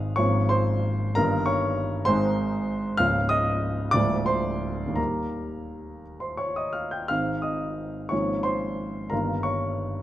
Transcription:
0.00 0.15 G#1 medium
0.00 0.15 G#2 medium
0.00 0.14 D#3 soft
0.00 0.14 G#3 medium
0.00 0.15 C4 soft
0.00 0.13 D#5 medium
0.00 0.20 F5 medium
0.00 0.17 D#6 medium
0.00 0.20 F6 loud
0.16 1.14 G#1 medium
0.16 1.13 G#2 medium
0.16 1.12 F3 medium
0.16 1.13 A#3 soft
0.16 1.13 C#4 medium
0.16 0.48 C#5 medium
0.16 0.50 C#6 loud
0.49 1.12 C5 medium
0.49 1.15 C6 loud
1.15 2.04 G1 medium
1.15 2.04 G2 medium
1.15 2.03 D#3 medium
1.15 2.03 A#3 soft
1.15 2.04 D#4 soft
1.15 1.45 A#4 medium
1.15 1.46 A#5 loud
1.46 2.02 C#5 medium
1.46 2.06 C#6 medium
2.05 2.96 G#1 medium
2.05 2.96 G#2 medium
2.05 2.95 D#3 medium
2.05 2.95 G#3 medium
2.05 2.94 C5 medium
2.05 2.98 C6 loud
2.09 2.96 D#4 medium
2.97 3.92 C#1 medium
2.97 3.92 C#2 medium
2.97 3.91 F3 medium
2.97 3.91 A#3 soft
2.97 3.92 C#4 medium
2.97 3.28 F5 medium
2.97 3.30 F6 loud
3.29 3.91 D#5 medium
3.29 3.94 D#6 loud
3.91 4.94 D1 medium
3.91 4.94 D2 medium
3.91 4.94 F3 soft
3.91 4.94 G#3 medium
3.91 4.25 D5 medium
3.91 4.26 D6 loud
3.96 4.94 A#3 soft
4.26 4.93 C5 medium
4.26 4.96 C6 medium
4.87 7.01 D#2 soft
4.94 7.05 D#3 soft
4.94 7.05 G3 soft
4.94 7.06 A#3 soft
4.94 6.00 A#4 soft
4.94 6.03 A#5 medium
6.20 6.38 C5 soft
6.20 6.38 C6 medium
6.37 6.55 C#5 medium
6.37 6.56 C#6 medium
6.56 6.74 D#5 medium
6.56 6.75 D#6 medium
6.73 6.91 F5 soft
6.73 6.92 F6 medium
6.91 7.09 G5 soft
6.91 7.09 G6 medium
7.08 8.09 G#1 soft
7.08 8.09 G#2 soft
7.08 8.08 D#3 soft
7.08 8.08 G#3 soft
7.08 8.08 C4 soft
7.08 7.42 F5 medium
7.08 7.43 F6 medium
7.42 8.07 D#5 medium
7.42 8.10 D#6 medium
8.09 9.08 G#1 medium
8.09 9.09 G#2 soft
8.09 9.07 F3 soft
8.09 9.07 A#3 soft
8.09 9.08 C#4 soft
8.09 8.42 C#5 medium
8.09 8.44 C#6 medium
8.43 9.07 C5 medium
8.43 9.10 C6 medium
9.10 10.02 G1 medium
9.10 10.02 G2 soft
9.10 10.02 D#3 soft
9.10 10.02 A#3 soft
9.10 10.02 D#4 soft
9.10 9.42 A#4 medium
9.10 9.44 A#5 medium
9.43 10.02 C#5 medium
9.43 10.02 C#6 medium

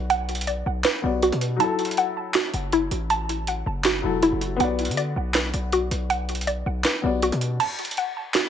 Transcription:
0.00 0.63 B1 loud
0.00 0.98 B3 medium
0.00 1.00 F#4 medium
0.00 1.22 F#4 medium
0.00 0.83 B4 medium
0.00 0.46 D5 medium
0.00 1.02 D5 medium
0.10 1.60 F#5 loud
0.10 closed hi-hat medium
0.29 closed hi-hat medium
0.35 closed hi-hat medium
0.41 closed hi-hat medium
0.47 1.60 D5 medium
0.47 closed hi-hat medium
0.66 0.84 B1 loud
0.84 1.60 B4 medium
0.84 snare loud
0.84 clap medium
0.84 closed hi-hat medium
1.02 1.31 B1 loud
1.02 1.59 B3 medium
1.02 1.60 F#4 medium
1.02 1.61 D5 medium
1.22 1.60 F#4 medium
1.22 closed hi-hat medium
1.32 1.59 B2 loud
1.32 closed hi-hat soft
1.41 closed hi-hat medium
1.56 3.98 F#3 medium
1.56 4.00 E4 medium
1.56 3.09 A5 loud
1.56 closed hi-hat medium
1.64 4.02 A4 medium
1.79 closed hi-hat medium
1.85 closed hi-hat medium
1.91 closed hi-hat medium
1.97 3.47 F#5 medium
1.97 closed hi-hat medium
2.34 3.84 F#4 medium
2.34 snare loud
2.34 clap medium
2.34 closed hi-hat medium
2.54 2.90 F#1 loud
2.54 closed hi-hat medium
2.72 4.22 E4 loud
2.72 closed hi-hat medium
2.91 3.63 A1 loud
2.91 closed hi-hat medium
3.10 4.60 A5 loud
3.10 closed hi-hat medium
3.29 closed hi-hat medium
3.47 4.59 F#5 medium
3.47 closed hi-hat medium
3.66 4.02 F#1 loud
3.84 4.60 F#4 medium
3.84 snare loud
3.84 clap medium
3.84 closed hi-hat medium
4.02 4.31 E1 loud
4.02 4.59 F#3 medium
4.02 4.60 E4 medium
4.02 4.61 A4 medium
4.23 4.60 E4 medium
4.23 closed hi-hat medium
4.32 4.59 F#1 loud
4.41 closed hi-hat medium
4.56 4.90 B1 loud
4.56 6.98 B3 medium
4.56 7.00 F#4 medium
4.56 6.09 F#5 loud
4.56 closed hi-hat medium
4.64 7.02 D5 medium
4.79 closed hi-hat medium
4.85 5.15 D3 loud
4.85 closed hi-hat medium
4.91 closed hi-hat medium
4.97 6.46 D5 medium
4.97 closed hi-hat medium
5.16 5.52 B1 loud
5.34 6.83 B4 medium
5.34 snare loud
5.34 clap medium
5.34 closed hi-hat medium
5.54 5.90 B1 loud
5.54 closed hi-hat medium
5.72 7.22 F#4 medium
5.72 closed hi-hat medium
5.91 6.63 B1 loud
5.91 closed hi-hat medium
6.10 7.60 F#5 loud
6.10 closed hi-hat medium
6.29 closed hi-hat medium
6.35 closed hi-hat medium
6.41 closed hi-hat medium
6.47 7.60 D5 medium
6.47 closed hi-hat medium
6.66 6.84 B1 loud
6.84 7.60 B4 medium
6.84 snare loud
6.84 clap medium
6.84 closed hi-hat medium
7.02 7.31 B1 loud
7.02 7.59 B3 medium
7.02 7.60 F#4 medium
7.02 7.61 D5 medium
7.22 7.60 F#4 medium
7.22 closed hi-hat medium
7.32 7.59 B2 loud
7.32 closed hi-hat soft
7.41 closed hi-hat medium
7.60 8.49 A5 loud
7.60 closed hi-hat medium
7.60 crash medium
7.79 closed hi-hat medium
7.85 closed hi-hat medium
7.91 closed hi-hat medium
7.97 8.49 F#5 medium
7.97 closed hi-hat medium
8.34 8.49 F#4 medium
8.34 snare loud
8.34 clap medium
8.34 closed hi-hat medium

